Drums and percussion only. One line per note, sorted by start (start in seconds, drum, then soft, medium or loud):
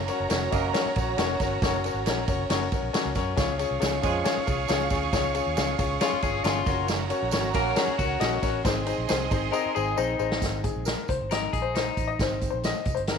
0.08 ride medium
0.08 tambourine medium
0.30 snare loud
0.30 ride medium
0.30 tambourine loud
0.52 kick loud
0.52 ride medium
0.52 tambourine medium
0.74 snare loud
0.74 ride medium
0.74 tambourine medium
0.96 kick medium
0.96 ride medium
0.96 tambourine medium
1.18 snare loud
1.18 ride medium
1.18 tambourine medium
1.40 kick medium
1.40 snare soft
1.40 ride medium
1.40 tambourine medium
1.62 kick loud
1.62 snare loud
1.62 ride medium
1.62 tambourine medium
1.84 ride medium
1.84 tambourine medium
2.06 snare loud
2.06 ride medium
2.06 tambourine loud
2.28 kick loud
2.28 ride medium
2.28 tambourine medium
2.50 snare loud
2.50 ride medium
2.50 tambourine medium
2.72 kick medium
2.72 ride medium
2.72 tambourine soft
2.94 snare loud
2.94 ride medium
2.94 tambourine medium
3.15 kick medium
3.15 snare soft
3.15 ride medium
3.15 tambourine soft
3.37 kick loud
3.37 snare loud
3.37 ride medium
3.37 tambourine loud
3.59 ride medium
3.59 tambourine medium
3.82 snare loud
3.82 ride medium
3.82 tambourine loud
4.03 kick medium
4.03 ride medium
4.03 tambourine medium
4.25 snare loud
4.25 ride medium
4.25 tambourine medium
4.47 kick medium
4.47 ride medium
4.47 tambourine medium
4.68 snare loud
4.68 ride medium
4.68 tambourine medium
4.90 kick medium
4.90 snare soft
4.90 ride medium
4.90 tambourine medium
5.13 kick loud
5.13 snare loud
5.13 ride medium
5.13 tambourine loud
5.35 ride medium
5.35 tambourine medium
5.57 snare loud
5.57 ride medium
5.57 tambourine loud
5.79 kick medium
5.79 ride medium
5.79 tambourine medium
6.01 snare loud
6.01 ride medium
6.01 tambourine medium
6.22 kick medium
6.22 ride medium
6.22 tambourine medium
6.44 snare loud
6.44 ride medium
6.44 tambourine medium
6.66 kick loud
6.66 snare soft
6.66 ride medium
6.66 tambourine medium
6.88 snare loud
6.88 ride medium
6.88 tambourine medium
7.10 ride medium
7.10 tambourine medium
7.31 snare loud
7.31 ride medium
7.31 tambourine loud
7.54 kick loud
7.54 ride medium
7.54 tambourine medium
7.76 snare loud
7.76 ride medium
7.76 tambourine loud
7.99 kick medium
7.99 ride medium
7.99 tambourine medium
8.21 snare loud
8.21 ride medium
8.21 tambourine medium
8.43 kick medium
8.43 snare soft
8.43 ride medium
8.43 tambourine medium
8.65 kick loud
8.65 snare loud
8.65 ride medium
8.65 tambourine loud
8.87 ride medium
8.87 tambourine medium
9.09 snare loud
9.09 ride medium
9.09 tambourine loud
9.31 kick loud
9.31 ride medium
9.31 tambourine medium
9.53 tambourine medium
9.76 tambourine medium
9.98 tambourine medium
10.19 tambourine medium
10.32 snare loud
10.42 kick loud
10.42 snare medium
10.42 closed hi-hat medium
10.42 tambourine medium
10.64 kick medium
10.64 closed hi-hat medium
10.64 tambourine medium
10.85 snare loud
10.85 closed hi-hat medium
10.85 tambourine loud
11.08 kick medium
11.08 closed hi-hat medium
11.08 tambourine soft
11.31 snare loud
11.31 closed hi-hat medium
11.31 tambourine medium
11.53 kick medium
11.53 closed hi-hat medium
11.53 tambourine medium
11.75 snare loud
11.75 closed hi-hat medium
11.75 tambourine medium
11.97 kick medium
11.97 closed hi-hat medium
11.97 tambourine medium
12.19 kick loud
12.19 snare loud
12.19 closed hi-hat medium
12.19 tambourine medium
12.41 kick medium
12.41 closed hi-hat medium
12.41 tambourine medium
12.63 snare loud
12.63 closed hi-hat medium
12.63 tambourine loud
12.85 kick medium
12.85 closed hi-hat medium
12.85 tambourine medium
12.97 closed hi-hat medium
13.07 snare loud
13.07 closed hi-hat loud
13.07 tambourine medium